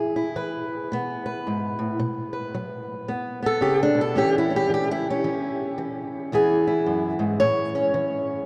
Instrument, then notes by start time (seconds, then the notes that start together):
steel-string acoustic guitar
Already playing: E2 E4 G#4
0.16 E4
0.36 E3 B4
0.92 B2 B3
1.26 B4
1.47 G#2
1.79 A2
2.00 B2
2.33 B4
2.54 F#3
3.08 F#2 B3
3.43 B3 A4
3.61 C#3 G4
3.83 D4
3.95 B2
4.01 A4
4.15 A2 E3 C#4 G4
4.38 E4
4.50 C#4
4.56 G4
4.70 E3
4.74 G4
4.91 E4
5.10 C#4
5.24 E3
5.78 E3
6.32 E2 E3 B3 E4 G#4
6.67 E4
6.86 F#2
7.19 G#2
7.40 A2 C#5
7.75 C#4
7.94 E3